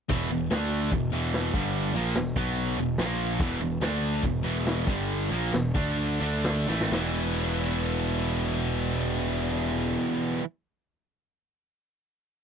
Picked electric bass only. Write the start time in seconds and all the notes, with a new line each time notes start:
0.10 E1
0.30 E1
0.51 D2
0.92 E1
1.12 E1
1.53 G1
1.94 A#1
2.15 E1
2.36 B1
2.78 E1
2.98 A#1
3.40 E1
3.60 E1
3.80 D2
4.23 E1
4.44 E1
4.87 G1
5.31 A#1
5.53 E1
5.75 D2
6.21 D2
6.68 A1
6.92 E1